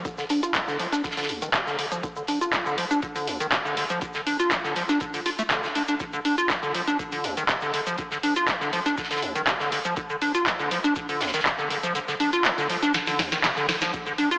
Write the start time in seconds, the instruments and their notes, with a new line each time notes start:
0.05 acid bass D3, kick, closed hi-hat, shaker
0.18 acid bass D3, snare, shaker
0.29 acid bass D4, closed hi-hat, open hi-hat
0.43 acid bass F4, closed hi-hat, shaker
0.54 acid bass D3, kick, snare, clap, closed hi-hat, shaker
0.67 acid bass D3, snare, shaker
0.79 acid bass F3, closed hi-hat, open hi-hat
0.92 acid bass D4, snare, closed hi-hat, shaker
1.04 acid bass D3, kick, snare, closed hi-hat, shaker
1.11 snare, closed hi-hat
1.17 acid bass D3, snare, closed hi-hat, open hi-hat, shaker
1.23 snare, closed hi-hat
1.29 acid bass D2, closed hi-hat, open hi-hat
1.42 acid bass D#3, closed hi-hat, shaker
1.53 acid bass C3, kick, snare, clap, closed hi-hat, shaker
1.67 acid bass D3, snare, shaker
1.79 acid bass D3, closed hi-hat, open hi-hat
1.92 acid bass F3, closed hi-hat, shaker
2.03 acid bass D3, kick, closed hi-hat, shaker
2.16 acid bass D3, shaker
2.27 acid bass D4, closed hi-hat, open hi-hat
2.41 acid bass F4, closed hi-hat, shaker
2.53 acid bass D3, kick, snare, clap, closed hi-hat, shaker
2.66 acid bass D3, shaker
2.78 acid bass F3, closed hi-hat, open hi-hat
2.91 acid bass D4, closed hi-hat, shaker
3.02 acid bass D3, kick, closed hi-hat, shaker
3.15 acid bass D3, open hi-hat, shaker
3.27 acid bass D2, closed hi-hat, open hi-hat
3.40 acid bass D#3, closed hi-hat, shaker
3.52 acid bass C3, kick, snare, clap, closed hi-hat, shaker
3.65 acid bass D3, shaker
3.77 acid bass D3, closed hi-hat, open hi-hat
3.89 acid bass F3, closed hi-hat, shaker
4.01 acid bass D3, kick, closed hi-hat, shaker
4.13 acid bass D3, snare, shaker
4.27 acid bass D4, closed hi-hat, open hi-hat
4.39 acid bass F4, closed hi-hat, shaker
4.51 acid bass D3, kick, snare, clap, closed hi-hat, shaker
4.64 acid bass D3, snare, shaker
4.76 acid bass F3, closed hi-hat, open hi-hat
4.89 acid bass D4, snare, closed hi-hat, shaker
5.00 acid bass D3, kick, closed hi-hat, shaker
5.14 acid bass D3, open hi-hat, shaker
5.26 acid bass F4, closed hi-hat, open hi-hat
5.39 acid bass A3, closed hi-hat, shaker
5.50 acid bass D3, kick, snare, clap, closed hi-hat, shaker
5.64 acid bass D3, snare, shaker
5.75 acid bass D4, closed hi-hat, open hi-hat
5.88 acid bass D4, closed hi-hat, shaker
6.00 acid bass D3, kick, closed hi-hat, shaker
6.13 acid bass D3, shaker
6.25 acid bass D4, closed hi-hat, open hi-hat
6.38 acid bass F4, closed hi-hat, shaker
6.50 acid bass D3, kick, snare, clap, closed hi-hat, shaker
6.63 acid bass D3, shaker
6.74 acid bass F3, closed hi-hat, open hi-hat
6.87 acid bass D4, closed hi-hat, shaker
6.99 acid bass D3, kick, closed hi-hat, shaker
7.12 acid bass D3, open hi-hat, shaker
7.24 acid bass D2, closed hi-hat, open hi-hat
7.37 acid bass D#3, closed hi-hat, shaker
7.49 acid bass C3, kick, snare, clap, closed hi-hat, shaker
7.61 acid bass D3, shaker
7.74 acid bass D3, closed hi-hat, open hi-hat
7.87 acid bass F3, closed hi-hat, shaker
7.98 acid bass D3, kick, closed hi-hat, shaker
8.11 acid bass D3, snare, shaker
8.23 acid bass D4, closed hi-hat, open hi-hat
8.36 acid bass F4, closed hi-hat, shaker
8.48 acid bass D3, kick, snare, clap, closed hi-hat, shaker
8.61 acid bass D3, snare, shaker
8.73 acid bass F3, closed hi-hat, open hi-hat
8.85 acid bass D4, snare, closed hi-hat, shaker
8.97 acid bass D3, kick, snare, closed hi-hat, shaker
9.03 snare, closed hi-hat
9.11 acid bass D3, snare, closed hi-hat, open hi-hat, shaker
9.16 snare, closed hi-hat
9.22 acid bass D2, closed hi-hat, open hi-hat
9.35 acid bass D#3, closed hi-hat, shaker
9.47 acid bass C3, kick, snare, clap, closed hi-hat, shaker
9.60 acid bass D3, snare, shaker
9.72 acid bass D3, closed hi-hat, open hi-hat
9.84 acid bass F3, closed hi-hat, shaker
9.96 acid bass D3, kick, closed hi-hat, shaker
10.10 acid bass D3, shaker
10.21 acid bass D4, closed hi-hat, open hi-hat
10.35 acid bass F4, closed hi-hat, shaker
10.46 acid bass D3, kick, snare, clap, closed hi-hat, shaker
10.59 acid bass D3, shaker
10.71 acid bass F3, closed hi-hat, open hi-hat
10.84 acid bass D4, closed hi-hat, shaker
10.96 acid bass D3, kick, closed hi-hat, shaker
11.09 acid bass D3, open hi-hat, shaker
11.20 acid bass D2, snare, closed hi-hat, open hi-hat
11.27 snare, closed hi-hat
11.34 acid bass D#3, snare, closed hi-hat, shaker
11.40 snare, closed hi-hat
11.46 acid bass C3, kick, snare, clap, closed hi-hat, shaker
11.59 acid bass D3, shaker
11.70 acid bass D3, closed hi-hat, open hi-hat
11.83 acid bass F3, closed hi-hat, shaker
11.95 acid bass D3, closed hi-hat, shaker
12.08 acid bass D3, snare, shaker
12.20 acid bass D4, closed hi-hat, open hi-hat
12.32 acid bass F4, closed hi-hat, shaker
12.45 acid bass D3, snare, clap, closed hi-hat, shaker
12.58 acid bass D3, snare, shaker
12.69 acid bass F3, closed hi-hat, open hi-hat
12.82 acid bass D4, snare, closed hi-hat, shaker
12.94 acid bass D3, snare, closed hi-hat, shaker
13.07 acid bass D3, snare, open hi-hat, shaker
13.19 acid bass D2, snare, closed hi-hat, open hi-hat
13.32 acid bass D#3, snare, closed hi-hat, shaker
13.44 acid bass C3, snare, clap, closed hi-hat, shaker
13.57 acid bass D3, snare, shaker
13.69 snare, closed hi-hat, open hi-hat
13.81 acid bass F3, snare, closed hi-hat, shaker
13.93 acid bass D3, kick, closed hi-hat, shaker
14.06 acid bass D3, shaker
14.18 acid bass D4, closed hi-hat, open hi-hat
14.31 acid bass F4, closed hi-hat, shaker